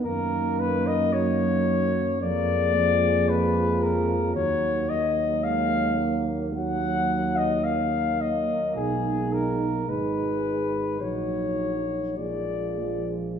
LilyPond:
<<
  \new Staff \with { instrumentName = "Flugelhorn" } { \time 4/4 \key ees \minor \tempo 4 = 54 bes'8 ces''16 ees''16 des''4 d''4 ces''8 bes'8 | des''8 ees''8 f''8. r16 ges''8. ees''16 f''8 ees''8 | aes'8 bes'8 ces''4 des''4 d''8. r16 | }
  \new Staff \with { instrumentName = "French horn section" } { \time 4/4 \key ees \minor bes2 bes2 | bes2 bes2 | ees'4 ees'4 ees'4 f'4 | }
  \new Staff \with { instrumentName = "Trombone" } { \clef bass \time 4/4 \key ees \minor bes4 ges4 bes8 f4. | ges8. r16 aes8 bes8 ges4 bes4~ | bes4 aes4 ges8. r16 bes8 f8 | }
  \new Staff \with { instrumentName = "Euphonium" } { \clef bass \time 4/4 \key ees \minor ees4.~ ees16 r16 aes2 | ges2 ges2 | aes4 aes4 ges4 aes4 | }
  \new Staff \with { instrumentName = "Tuba" } { \clef bass \time 4/4 \key ees \minor ges,2 f,2 | ees,1 | ces,4 aes,,4 bes,,4 bes,,4 | }
>>